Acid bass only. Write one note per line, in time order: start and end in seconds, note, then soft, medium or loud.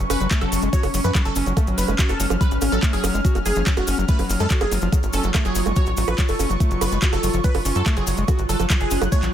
0.10 0.20 C#4 loud
0.20 0.27 F#3 loud
0.31 0.41 A3 loud
0.41 0.51 F#3 medium
0.52 0.62 F#3 medium
0.62 0.69 G#3 medium
0.73 0.83 F#4 loud
0.83 0.87 F#4 medium
0.94 1.00 F#3 medium
1.04 1.11 F3 medium
1.15 1.21 F#3 medium
1.36 1.46 C#4 loud
1.46 1.53 F#3 loud
1.57 1.67 A3 loud
1.67 1.77 F#3 medium
1.78 1.88 F#3 medium
1.88 1.95 G#3 medium
1.99 2.09 F#4 loud
2.09 2.13 F#4 medium
2.20 2.26 F#3 medium
2.30 2.37 F3 medium
2.41 2.47 F#3 medium
2.62 2.72 C#4 loud
2.72 2.79 F#3 loud
2.83 2.93 A3 loud
2.93 3.03 F#3 medium
3.04 3.13 F#3 medium
3.14 3.21 G#3 medium
3.25 3.34 F#4 loud
3.35 3.39 F#4 medium
3.46 3.52 F#3 medium
3.56 3.63 F3 medium
3.67 3.73 F#3 medium
3.88 3.97 C#4 loud
3.98 4.05 F#3 loud
4.09 4.18 A3 loud
4.19 4.29 F#3 medium
4.30 4.39 F#3 medium
4.40 4.47 G#3 medium
4.51 4.60 F#4 loud
4.61 4.65 F#4 medium
4.72 4.78 F#3 medium
4.82 4.89 F3 medium
4.92 4.99 F#3 medium
5.13 5.23 C#4 loud
5.24 5.31 F#3 loud
5.34 5.44 A3 loud
5.45 5.55 F#3 medium
5.55 5.65 F#3 medium
5.66 5.72 G#3 medium
5.76 5.86 F#4 loud
5.87 5.91 F#4 medium
5.97 6.04 F#3 medium
6.08 6.14 F3 medium
6.18 6.25 F#3 medium
6.39 6.49 C#4 loud
6.50 6.56 F#3 loud
6.60 6.70 A3 loud
6.71 6.81 F#3 medium
6.81 6.91 F#3 medium
6.92 6.98 G#3 medium
7.02 7.12 F#4 loud
7.13 7.17 F#4 medium
7.23 7.30 F#3 medium
7.34 7.40 F3 medium
7.44 7.51 F#3 medium
7.65 7.75 C#4 loud
7.76 7.82 F#3 loud
7.86 7.96 A3 loud
7.97 8.07 F#3 medium
8.07 8.17 F#3 medium
8.18 8.24 G#3 medium
8.28 8.38 F#4 loud
8.39 8.43 F#4 medium
8.49 8.56 F#3 medium
8.60 8.66 F3 medium
8.70 8.77 F#3 medium
8.91 9.01 C#4 loud
9.02 9.08 F#3 loud
9.12 9.22 A3 loud
9.23 9.32 F#3 medium